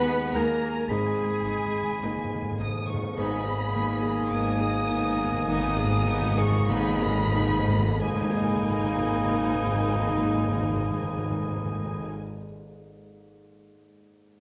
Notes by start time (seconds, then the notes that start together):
Already playing: D#2 D#3 G#3 B3 D#4 G#4 B4 F#5 G#5 B5
0.09 D#5
0.34 D#2 G#3 A#3 D#4 A#4 G#5 A#5
0.62 G#4
0.89 G#1 G#2 G#3 A#3 D#4 G#4 G#5 B5
0.94 G#2 G#3
1.06 G#2
1.16 G#2 A#3
1.22 G#2
1.30 G#2
1.40 G#2
1.45 G#1 G#2 A#3 D#4 G#4
1.57 G#2
1.65 G#2
1.74 G#2
1.82 G#2
1.90 G#2
2.00 G#1 G#2 A#3 D#4 D#5
2.04 G#2 A#3 D#4 G#4
2.16 G#2
2.24 G#2
2.34 G#2
2.42 G#2
2.51 G#2
2.59 G#1 G#2 A#3 D#4 G#4 D#6
2.67 G#2
2.77 G#2
2.86 G#2 D#4 C#6
2.94 G#2
3.03 G#2
3.16 G#1 G#2 A#3 B3 D#4 A#4 D#5 G#5 B5
3.21 A#3 D#4
3.25 G#2
3.33 G#2
3.42 G#2 G#4 A#5
3.47 G#2 A#3 B3
3.59 G#2
3.68 G#2
3.73 G#2 D#3 A#3 B3 D#4 A#4 G#5
3.85 G#2
3.93 G#2
4.01 G#2 A#3 B3 G#4 A#5
4.11 G#2
4.20 G#2
4.29 G#1 G#2 A#3 B3 D#4 A#4 G#5 D#6
4.36 G#2
4.46 G#2
4.54 G#2
4.59 A#3 B3 G#4 A#5
4.63 G#2
4.71 G#2
4.80 G#2
4.88 G#2 A#3 B3 D#4 A#4 G#5
4.98 G#2
5.07 G#2
5.16 G#2 A#3 B3 G#4 A#4 A#5
5.24 G#2
5.32 G#2
5.42 G#1 G#2 B3 D#4 A#4 G#5
5.46 G#2 D#3 D#6
5.59 G#2
5.67 G#2
5.76 G#2 A#3 B3 G#4 A#5
5.85 G#2
5.92 G#2
6.02 G#2 D#3 A#3 B3 D#4 A#4
6.07 G#5
6.12 G#2
6.22 G#2
6.31 G#2 B3
6.36 A#3 G#4 A#5 C#6
6.41 G#2
6.50 G#2
6.59 G#2
6.67 G#1 G#2 A#3 B3 D#4 A#4 G#5 B5
6.77 G#2
6.86 G#2
6.96 G#2 A#3 B3
7.02 G#4 A#5
7.06 G#2
7.18 G#2
7.27 G#2
7.33 A#3 B3 D#4
7.37 G#2 A#4 G#5
7.48 G#2
7.59 G#2
7.68 G#2 A#3 B3 G#4 A#4 A#5
7.79 G#2
7.88 G#2
8.01 G#1 G#2 A#3 D#4 A#4 D#5 G#5 B5
8.07 G#2 G#3
8.14 G#2 A#3
8.21 G#2 D#4
8.28 G#2 G#4
8.35 G#2 D#5
8.41 G#2
8.48 G#2
8.55 G#2
8.63 G#2
8.69 G#2
8.76 G#2
8.84 G#2
8.91 G#2
8.98 G#2
9.05 G#2
9.12 G#2
9.18 G#2
9.25 G#2
9.32 G#2
9.39 G#2
9.46 G#2
9.53 G#2
9.60 G#2
9.67 G#2
9.74 G#2
9.80 G#2
9.87 G#2
9.95 G#2
10.01 G#2
10.09 G#2
10.15 G#2
10.23 G#2
10.29 G#2
10.36 G#2
10.42 G#2
10.49 G#2
10.56 G#2
10.62 G#2
10.69 G#2
10.76 G#2
10.83 G#2
10.90 G#2
10.96 G#2
11.03 G#2
11.09 G#2
11.16 G#2
11.23 G#2
11.30 G#2
11.37 G#2
11.44 G#2
11.51 G#2
11.56 G#2
11.64 G#2
11.71 G#2
11.78 G#2
11.85 G#2
11.92 G#2
11.99 G#2
12.06 G#2